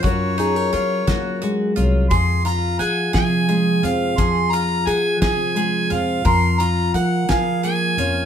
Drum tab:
HH |xxxxxx|xxxxxx|xxxxxx|xxxxxx|
SD |---o--|---o--|---o--|---o--|
BD |o--o--|o--o--|o--o--|o--o--|